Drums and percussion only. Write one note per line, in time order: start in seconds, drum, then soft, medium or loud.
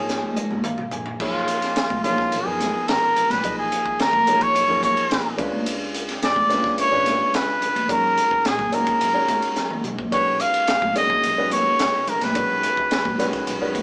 0.09 snare medium
0.09 hi-hat pedal medium
0.23 high conga medium
0.36 hi-hat pedal medium
0.36 high tom medium
0.51 high conga medium
0.51 low conga medium
0.64 hi-hat pedal medium
0.64 mid tom medium
0.78 mid tom medium
0.91 floor tom medium
0.91 hi-hat pedal medium
0.91 low conga medium
1.06 floor tom medium
1.20 kick loud
1.20 crash medium
1.48 hi-hat pedal medium
1.48 ride medium
1.62 snare soft
1.62 ride medium
1.76 snare loud
1.76 hi-hat pedal medium
1.76 ride medium
1.90 kick medium
1.90 high conga medium
2.04 hi-hat pedal medium
2.04 ride medium
2.04 high conga medium
2.04 low conga medium
2.18 kick medium
2.18 snare soft
2.32 hi-hat pedal medium
2.32 ride medium
2.60 snare soft
2.60 hi-hat pedal medium
2.60 ride medium
2.60 high conga medium
2.88 snare loud
2.88 hi-hat pedal medium
2.88 ride medium
3.16 hi-hat pedal medium
3.16 ride medium
3.16 low conga medium
3.30 snare soft
3.30 ride medium
3.30 high conga medium
3.44 kick medium
3.44 hi-hat pedal medium
3.44 ride medium
3.72 hi-hat pedal medium
3.72 ride medium
3.86 kick medium
4.00 snare loud
4.00 hi-hat pedal medium
4.00 ride medium
4.13 kick medium
4.13 high conga medium
4.27 hi-hat pedal medium
4.27 ride medium
4.27 high conga medium
4.27 low conga medium
4.41 kick medium
4.41 ride medium
4.55 hi-hat pedal medium
4.55 ride medium
4.82 kick medium
4.82 hi-hat pedal medium
4.82 ride medium
4.82 high conga medium
4.97 ride medium
5.11 snare loud
5.11 hi-hat pedal medium
5.11 ride medium
5.38 kick medium
5.38 hi-hat pedal medium
5.38 ride medium
5.38 low conga medium
5.52 high conga medium
5.66 hi-hat pedal medium
5.66 ride medium
5.94 hi-hat pedal medium
5.94 ride medium
6.09 snare soft
6.09 ride medium
6.23 snare medium
6.23 hi-hat pedal medium
6.23 ride medium
6.36 kick medium
6.36 high conga medium
6.50 snare soft
6.50 hi-hat pedal medium
6.50 ride medium
6.50 high conga medium
6.50 low conga medium
6.64 kick medium
6.64 snare soft
6.78 hi-hat pedal medium
6.78 ride medium
7.06 snare soft
7.06 hi-hat pedal medium
7.06 ride medium
7.06 high conga medium
7.34 snare loud
7.34 hi-hat pedal medium
7.34 ride medium
7.61 hi-hat pedal medium
7.61 ride medium
7.61 low conga medium
7.75 ride medium
7.75 high conga medium
7.89 kick loud
7.89 hi-hat pedal medium
7.89 ride medium
8.18 hi-hat pedal medium
8.18 ride medium
8.31 kick medium
8.45 snare loud
8.45 hi-hat pedal medium
8.45 ride medium
8.59 kick medium
8.59 high conga medium
8.72 hi-hat pedal medium
8.72 ride medium
8.72 high conga medium
8.72 low conga medium
8.87 kick medium
8.87 ride medium
9.01 hi-hat pedal medium
9.01 ride medium
9.28 kick medium
9.28 snare soft
9.28 hi-hat pedal medium
9.28 ride medium
9.28 high conga medium
9.42 ride medium
9.56 snare medium
9.56 hi-hat pedal medium
9.70 mid tom medium
9.70 high conga medium
9.84 hi-hat pedal medium
9.84 mid tom medium
9.84 low conga medium
9.99 kick medium
9.99 high conga medium
10.12 kick loud
10.12 hi-hat pedal medium
10.12 ride medium
10.40 hi-hat pedal medium
10.40 ride medium
10.54 ride medium
10.67 snare loud
10.67 hi-hat pedal medium
10.67 ride medium
10.82 kick medium
10.82 high conga medium
10.96 hi-hat pedal medium
10.96 ride medium
10.96 high conga medium
10.96 low conga medium
11.10 kick medium
11.23 hi-hat pedal medium
11.23 ride medium
11.51 hi-hat pedal medium
11.51 ride medium
11.51 high conga medium
11.79 snare loud
11.79 hi-hat pedal medium
11.79 ride medium
12.07 hi-hat pedal medium
12.07 ride medium
12.07 low conga medium
12.21 snare soft
12.21 ride medium
12.21 high conga medium
12.35 kick loud
12.35 hi-hat pedal medium
12.35 ride medium
12.63 hi-hat pedal medium
12.63 ride medium
12.77 kick medium
12.91 snare loud
12.91 hi-hat pedal medium
12.91 ride medium
13.05 kick medium
13.05 high conga medium
13.19 snare soft
13.19 hi-hat pedal medium
13.19 ride medium
13.19 high conga medium
13.19 low conga medium
13.33 kick medium
13.33 snare soft
13.33 ride medium
13.47 hi-hat pedal medium
13.47 ride medium
13.75 kick medium
13.75 hi-hat pedal medium
13.75 ride medium
13.75 high conga medium